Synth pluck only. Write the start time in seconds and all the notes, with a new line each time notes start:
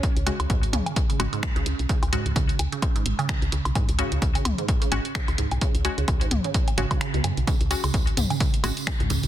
0.27 C#3
0.50 G#2
0.73 C#3
1.09 C#3
1.33 G#2
1.56 C#3
1.89 C#3
2.13 G#2
2.36 C#3
2.72 C#3
2.96 G#2
3.19 C#3
3.52 C#3
3.75 G#2
3.99 C#3
4.35 C#3
4.58 G#2
4.82 C#3
5.15 C#3
5.38 G#2
5.61 C#3
5.98 C#3
6.21 G#2
6.44 C#3
6.78 C#3
7.01 C#3
7.14 B2
7.24 C#3
7.47 C#3
7.84 C#3
8.17 G#2
8.30 C#3
8.64 C#3
9.00 G#2
9.10 C#3